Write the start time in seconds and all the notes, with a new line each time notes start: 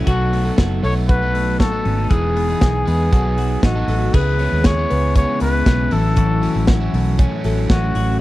Already playing: A3 C#4
0.06 B1 F#3 B3 D#4 F#4 A4, kick, closed hi-hat
0.33 A3, open hi-hat
0.45 F#3 B3 D#4 A4
0.58 F#1 F#4, kick, snare, closed hi-hat
0.83 B1 F#3 A3 B3 D#4 A4 C#5, open hi-hat
1.09 F#4 B4, kick, closed hi-hat
1.22 F#3 B3 D#4 A4
1.34 A3, open hi-hat
1.59 A1 F#4 A4, kick, snare, closed hi-hat
1.72 F#3 B3 D#4 A4
1.85 G#1 C#4, open hi-hat
1.98 D#4
2.10 E1 E3 G#3 B3 D#4 G#4, kick, closed hi-hat
2.36 B3, open hi-hat
2.49 B3 D#4 G#4
2.61 B1 G#4, kick, snare, closed hi-hat
2.86 E2 G#3 B3 D#4 G#4, open hi-hat
3.11 B1 B2 D#3 F#3 B3 D#4 A4, kick, closed hi-hat
3.25 F#3 B3 D#4
3.38 F#3, open hi-hat
3.63 A1 D#4 F#4, kick, snare, closed hi-hat
3.75 F#3 B3 D#4 A4
3.88 A1 A3, open hi-hat
4.14 C#2 C#3 G#3 B3 E4 G#4 B4, kick, crash
4.39 C#3 G#3 B3 C#4 E4, open hi-hat
4.52 D#2
4.64 G#4 C#5, kick, snare, closed hi-hat
4.77 G#3 B3 E4
4.90 C#2 B3, open hi-hat
5.15 C#3 G#3 B3 C#4 E4 C#5, kick, closed hi-hat
5.40 C#2 C#3 G#3 B3 E4 B4, open hi-hat
5.66 B1 C#3 G#3 B3 C#4 E4, kick, snare, closed hi-hat
5.90 A1 A2 E3 F#3 C#4 E4 A4, open hi-hat
6.16 E3 F#4, kick, closed hi-hat
6.41 A2 F#3 C#4 E4, open hi-hat
6.55 A1
6.67 F#4, kick, snare, closed hi-hat
6.80 F#3 C#4 E4
6.93 B1 A3, open hi-hat
7.18 A2 F#3 C#4 E4, kick, closed hi-hat
7.44 A1 A2 F#3 A3 C#4 E4, open hi-hat
7.69 A1 A2 F#3 C#4 E4 F#4, kick, snare, closed hi-hat
7.95 A1 F#4, open hi-hat